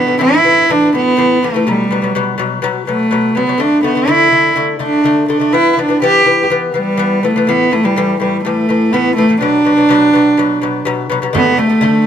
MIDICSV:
0, 0, Header, 1, 4, 480
1, 0, Start_track
1, 0, Tempo, 484653
1, 1640, Time_signature, 4, 2, 24, 8
1, 11950, End_track
2, 0, Start_track
2, 0, Title_t, "Cello"
2, 0, Program_c, 0, 42
2, 0, Note_on_c, 0, 59, 84
2, 201, Note_off_c, 0, 59, 0
2, 211, Note_on_c, 0, 64, 97
2, 702, Note_on_c, 0, 62, 91
2, 717, Note_off_c, 0, 64, 0
2, 931, Note_off_c, 0, 62, 0
2, 957, Note_on_c, 0, 59, 97
2, 1432, Note_on_c, 0, 57, 81
2, 1447, Note_off_c, 0, 59, 0
2, 1689, Note_on_c, 0, 55, 72
2, 1704, Note_off_c, 0, 57, 0
2, 2146, Note_off_c, 0, 55, 0
2, 2856, Note_on_c, 0, 57, 72
2, 3331, Note_on_c, 0, 59, 71
2, 3346, Note_off_c, 0, 57, 0
2, 3567, Note_on_c, 0, 62, 79
2, 3582, Note_off_c, 0, 59, 0
2, 3800, Note_off_c, 0, 62, 0
2, 3806, Note_on_c, 0, 59, 75
2, 4048, Note_on_c, 0, 64, 94
2, 4063, Note_off_c, 0, 59, 0
2, 4527, Note_off_c, 0, 64, 0
2, 4776, Note_on_c, 0, 62, 77
2, 5219, Note_off_c, 0, 62, 0
2, 5240, Note_on_c, 0, 62, 75
2, 5475, Note_on_c, 0, 64, 91
2, 5490, Note_off_c, 0, 62, 0
2, 5671, Note_off_c, 0, 64, 0
2, 5671, Note_on_c, 0, 64, 55
2, 5738, Note_on_c, 0, 62, 69
2, 5753, Note_off_c, 0, 64, 0
2, 5963, Note_off_c, 0, 62, 0
2, 5969, Note_on_c, 0, 67, 86
2, 6416, Note_off_c, 0, 67, 0
2, 6690, Note_on_c, 0, 55, 76
2, 7169, Note_on_c, 0, 57, 71
2, 7183, Note_off_c, 0, 55, 0
2, 7414, Note_on_c, 0, 59, 81
2, 7429, Note_off_c, 0, 57, 0
2, 7654, Note_on_c, 0, 57, 80
2, 7669, Note_off_c, 0, 59, 0
2, 7768, Note_on_c, 0, 55, 73
2, 7783, Note_off_c, 0, 57, 0
2, 8127, Note_off_c, 0, 55, 0
2, 8133, Note_on_c, 0, 55, 70
2, 8350, Note_off_c, 0, 55, 0
2, 8356, Note_on_c, 0, 57, 73
2, 8840, Note_on_c, 0, 59, 80
2, 8855, Note_off_c, 0, 57, 0
2, 9071, Note_off_c, 0, 59, 0
2, 9077, Note_on_c, 0, 57, 88
2, 9305, Note_off_c, 0, 57, 0
2, 9319, Note_on_c, 0, 62, 93
2, 10717, Note_off_c, 0, 62, 0
2, 11254, Note_on_c, 0, 59, 92
2, 11476, Note_on_c, 0, 57, 89
2, 11491, Note_off_c, 0, 59, 0
2, 11950, Note_off_c, 0, 57, 0
2, 11950, End_track
3, 0, Start_track
3, 0, Title_t, "Lute"
3, 0, Program_c, 1, 24
3, 67, Note_on_c, 1, 45, 64
3, 81, Note_on_c, 1, 52, 64
3, 168, Note_off_c, 1, 45, 0
3, 175, Note_off_c, 1, 52, 0
3, 186, Note_on_c, 1, 45, 86
3, 206, Note_on_c, 1, 52, 94
3, 384, Note_off_c, 1, 45, 0
3, 394, Note_off_c, 1, 52, 0
3, 433, Note_on_c, 1, 45, 64
3, 443, Note_on_c, 1, 52, 76
3, 628, Note_off_c, 1, 45, 0
3, 633, Note_off_c, 1, 52, 0
3, 686, Note_on_c, 1, 45, 70
3, 696, Note_on_c, 1, 52, 83
3, 874, Note_off_c, 1, 45, 0
3, 879, Note_off_c, 1, 52, 0
3, 919, Note_on_c, 1, 45, 55
3, 938, Note_on_c, 1, 52, 68
3, 1111, Note_off_c, 1, 45, 0
3, 1121, Note_off_c, 1, 52, 0
3, 1157, Note_on_c, 1, 45, 76
3, 1173, Note_on_c, 1, 52, 85
3, 1351, Note_off_c, 1, 45, 0
3, 1359, Note_off_c, 1, 52, 0
3, 1414, Note_on_c, 1, 45, 64
3, 1427, Note_on_c, 1, 52, 72
3, 1503, Note_off_c, 1, 45, 0
3, 1509, Note_off_c, 1, 52, 0
3, 1527, Note_on_c, 1, 45, 64
3, 1543, Note_on_c, 1, 52, 73
3, 1620, Note_off_c, 1, 45, 0
3, 1628, Note_off_c, 1, 52, 0
3, 1651, Note_on_c, 1, 47, 77
3, 1661, Note_on_c, 1, 54, 76
3, 1838, Note_off_c, 1, 47, 0
3, 1843, Note_off_c, 1, 54, 0
3, 1889, Note_on_c, 1, 47, 66
3, 1903, Note_on_c, 1, 54, 67
3, 1981, Note_off_c, 1, 47, 0
3, 1988, Note_off_c, 1, 54, 0
3, 2000, Note_on_c, 1, 47, 59
3, 2016, Note_on_c, 1, 54, 66
3, 2097, Note_off_c, 1, 47, 0
3, 2105, Note_off_c, 1, 54, 0
3, 2130, Note_on_c, 1, 47, 86
3, 2141, Note_on_c, 1, 54, 83
3, 2318, Note_off_c, 1, 47, 0
3, 2323, Note_off_c, 1, 54, 0
3, 2355, Note_on_c, 1, 47, 76
3, 2369, Note_on_c, 1, 54, 86
3, 2551, Note_off_c, 1, 47, 0
3, 2558, Note_off_c, 1, 54, 0
3, 2596, Note_on_c, 1, 47, 86
3, 2612, Note_on_c, 1, 54, 101
3, 2791, Note_off_c, 1, 47, 0
3, 2799, Note_off_c, 1, 54, 0
3, 2846, Note_on_c, 1, 47, 62
3, 2857, Note_on_c, 1, 54, 66
3, 3036, Note_off_c, 1, 47, 0
3, 3042, Note_off_c, 1, 54, 0
3, 3078, Note_on_c, 1, 47, 74
3, 3093, Note_on_c, 1, 54, 74
3, 3273, Note_off_c, 1, 47, 0
3, 3280, Note_off_c, 1, 54, 0
3, 3317, Note_on_c, 1, 47, 60
3, 3338, Note_on_c, 1, 54, 71
3, 3416, Note_off_c, 1, 47, 0
3, 3427, Note_off_c, 1, 54, 0
3, 3438, Note_on_c, 1, 47, 59
3, 3457, Note_on_c, 1, 54, 64
3, 3537, Note_off_c, 1, 47, 0
3, 3541, Note_off_c, 1, 54, 0
3, 3545, Note_on_c, 1, 50, 68
3, 3563, Note_on_c, 1, 57, 88
3, 3747, Note_off_c, 1, 50, 0
3, 3756, Note_off_c, 1, 57, 0
3, 3792, Note_on_c, 1, 50, 63
3, 3806, Note_on_c, 1, 57, 78
3, 3895, Note_off_c, 1, 50, 0
3, 3901, Note_off_c, 1, 57, 0
3, 3914, Note_on_c, 1, 50, 58
3, 3931, Note_on_c, 1, 57, 67
3, 4016, Note_off_c, 1, 50, 0
3, 4024, Note_off_c, 1, 57, 0
3, 4036, Note_on_c, 1, 50, 90
3, 4048, Note_on_c, 1, 57, 84
3, 4233, Note_off_c, 1, 50, 0
3, 4239, Note_off_c, 1, 57, 0
3, 4271, Note_on_c, 1, 50, 63
3, 4285, Note_on_c, 1, 57, 69
3, 4470, Note_off_c, 1, 50, 0
3, 4478, Note_off_c, 1, 57, 0
3, 4513, Note_on_c, 1, 50, 83
3, 4526, Note_on_c, 1, 57, 79
3, 4712, Note_off_c, 1, 50, 0
3, 4718, Note_off_c, 1, 57, 0
3, 4746, Note_on_c, 1, 50, 60
3, 4755, Note_on_c, 1, 57, 71
3, 4948, Note_off_c, 1, 50, 0
3, 4953, Note_off_c, 1, 57, 0
3, 4990, Note_on_c, 1, 50, 72
3, 5005, Note_on_c, 1, 57, 87
3, 5191, Note_off_c, 1, 50, 0
3, 5198, Note_off_c, 1, 57, 0
3, 5233, Note_on_c, 1, 50, 66
3, 5247, Note_on_c, 1, 57, 75
3, 5333, Note_off_c, 1, 50, 0
3, 5343, Note_off_c, 1, 57, 0
3, 5345, Note_on_c, 1, 50, 56
3, 5361, Note_on_c, 1, 57, 66
3, 5452, Note_off_c, 1, 50, 0
3, 5460, Note_off_c, 1, 57, 0
3, 5473, Note_on_c, 1, 52, 69
3, 5487, Note_on_c, 1, 59, 87
3, 5673, Note_off_c, 1, 52, 0
3, 5680, Note_off_c, 1, 59, 0
3, 5714, Note_on_c, 1, 52, 62
3, 5729, Note_on_c, 1, 59, 79
3, 5817, Note_off_c, 1, 52, 0
3, 5825, Note_off_c, 1, 59, 0
3, 5828, Note_on_c, 1, 52, 61
3, 5843, Note_on_c, 1, 59, 61
3, 5934, Note_off_c, 1, 52, 0
3, 5942, Note_off_c, 1, 59, 0
3, 5960, Note_on_c, 1, 52, 83
3, 5976, Note_on_c, 1, 59, 95
3, 6157, Note_off_c, 1, 52, 0
3, 6165, Note_off_c, 1, 59, 0
3, 6196, Note_on_c, 1, 52, 69
3, 6212, Note_on_c, 1, 59, 71
3, 6395, Note_off_c, 1, 52, 0
3, 6402, Note_off_c, 1, 59, 0
3, 6439, Note_on_c, 1, 52, 72
3, 6452, Note_on_c, 1, 59, 89
3, 6636, Note_off_c, 1, 52, 0
3, 6643, Note_off_c, 1, 59, 0
3, 6674, Note_on_c, 1, 52, 63
3, 6687, Note_on_c, 1, 59, 62
3, 6874, Note_off_c, 1, 52, 0
3, 6881, Note_off_c, 1, 59, 0
3, 6907, Note_on_c, 1, 52, 80
3, 6925, Note_on_c, 1, 59, 91
3, 7110, Note_off_c, 1, 52, 0
3, 7120, Note_off_c, 1, 59, 0
3, 7162, Note_on_c, 1, 52, 64
3, 7175, Note_on_c, 1, 59, 69
3, 7262, Note_off_c, 1, 52, 0
3, 7269, Note_off_c, 1, 59, 0
3, 7288, Note_on_c, 1, 52, 65
3, 7303, Note_on_c, 1, 59, 69
3, 7385, Note_off_c, 1, 52, 0
3, 7392, Note_off_c, 1, 59, 0
3, 7399, Note_on_c, 1, 45, 75
3, 7415, Note_on_c, 1, 52, 95
3, 7596, Note_off_c, 1, 45, 0
3, 7604, Note_off_c, 1, 52, 0
3, 7639, Note_on_c, 1, 45, 66
3, 7653, Note_on_c, 1, 52, 71
3, 7741, Note_off_c, 1, 45, 0
3, 7747, Note_off_c, 1, 52, 0
3, 7760, Note_on_c, 1, 45, 55
3, 7774, Note_on_c, 1, 52, 70
3, 7861, Note_off_c, 1, 45, 0
3, 7868, Note_off_c, 1, 52, 0
3, 7887, Note_on_c, 1, 45, 75
3, 7898, Note_on_c, 1, 52, 101
3, 8080, Note_off_c, 1, 45, 0
3, 8086, Note_off_c, 1, 52, 0
3, 8119, Note_on_c, 1, 45, 64
3, 8135, Note_on_c, 1, 52, 67
3, 8316, Note_off_c, 1, 45, 0
3, 8324, Note_off_c, 1, 52, 0
3, 8366, Note_on_c, 1, 45, 80
3, 8383, Note_on_c, 1, 52, 86
3, 8560, Note_off_c, 1, 45, 0
3, 8568, Note_off_c, 1, 52, 0
3, 8605, Note_on_c, 1, 45, 64
3, 8617, Note_on_c, 1, 52, 63
3, 8799, Note_off_c, 1, 45, 0
3, 8805, Note_off_c, 1, 52, 0
3, 8843, Note_on_c, 1, 45, 74
3, 8854, Note_on_c, 1, 52, 92
3, 9037, Note_off_c, 1, 45, 0
3, 9043, Note_off_c, 1, 52, 0
3, 9080, Note_on_c, 1, 45, 59
3, 9095, Note_on_c, 1, 52, 79
3, 9180, Note_off_c, 1, 45, 0
3, 9187, Note_off_c, 1, 52, 0
3, 9200, Note_on_c, 1, 45, 61
3, 9210, Note_on_c, 1, 52, 70
3, 9300, Note_off_c, 1, 45, 0
3, 9305, Note_off_c, 1, 52, 0
3, 9317, Note_on_c, 1, 47, 77
3, 9333, Note_on_c, 1, 54, 85
3, 9514, Note_off_c, 1, 47, 0
3, 9522, Note_off_c, 1, 54, 0
3, 9555, Note_on_c, 1, 47, 62
3, 9571, Note_on_c, 1, 54, 66
3, 9657, Note_off_c, 1, 47, 0
3, 9665, Note_off_c, 1, 54, 0
3, 9672, Note_on_c, 1, 47, 60
3, 9684, Note_on_c, 1, 54, 66
3, 9775, Note_off_c, 1, 47, 0
3, 9781, Note_off_c, 1, 54, 0
3, 9793, Note_on_c, 1, 47, 82
3, 9810, Note_on_c, 1, 54, 99
3, 9991, Note_off_c, 1, 47, 0
3, 9999, Note_off_c, 1, 54, 0
3, 10034, Note_on_c, 1, 47, 81
3, 10054, Note_on_c, 1, 54, 78
3, 10231, Note_off_c, 1, 47, 0
3, 10241, Note_off_c, 1, 54, 0
3, 10275, Note_on_c, 1, 47, 81
3, 10291, Note_on_c, 1, 54, 90
3, 10471, Note_off_c, 1, 47, 0
3, 10478, Note_off_c, 1, 54, 0
3, 10514, Note_on_c, 1, 47, 68
3, 10529, Note_on_c, 1, 54, 81
3, 10709, Note_off_c, 1, 47, 0
3, 10717, Note_off_c, 1, 54, 0
3, 10749, Note_on_c, 1, 47, 87
3, 10762, Note_on_c, 1, 54, 92
3, 10946, Note_off_c, 1, 47, 0
3, 10952, Note_off_c, 1, 54, 0
3, 10990, Note_on_c, 1, 47, 85
3, 11009, Note_on_c, 1, 54, 83
3, 11090, Note_off_c, 1, 47, 0
3, 11100, Note_off_c, 1, 54, 0
3, 11112, Note_on_c, 1, 47, 67
3, 11123, Note_on_c, 1, 54, 82
3, 11210, Note_off_c, 1, 47, 0
3, 11216, Note_off_c, 1, 54, 0
3, 11221, Note_on_c, 1, 50, 82
3, 11236, Note_on_c, 1, 57, 90
3, 11420, Note_off_c, 1, 50, 0
3, 11427, Note_off_c, 1, 57, 0
3, 11459, Note_on_c, 1, 50, 66
3, 11476, Note_on_c, 1, 57, 78
3, 11563, Note_off_c, 1, 50, 0
3, 11571, Note_off_c, 1, 57, 0
3, 11582, Note_on_c, 1, 50, 63
3, 11594, Note_on_c, 1, 57, 68
3, 11684, Note_off_c, 1, 50, 0
3, 11690, Note_off_c, 1, 57, 0
3, 11697, Note_on_c, 1, 50, 93
3, 11710, Note_on_c, 1, 57, 87
3, 11950, Note_off_c, 1, 50, 0
3, 11950, Note_off_c, 1, 57, 0
3, 11950, End_track
4, 0, Start_track
4, 0, Title_t, "Frame drum"
4, 11242, Note_on_c, 9, 64, 72
4, 11341, Note_off_c, 9, 64, 0
4, 11486, Note_on_c, 9, 64, 24
4, 11585, Note_off_c, 9, 64, 0
4, 11724, Note_on_c, 9, 64, 55
4, 11823, Note_off_c, 9, 64, 0
4, 11950, End_track
0, 0, End_of_file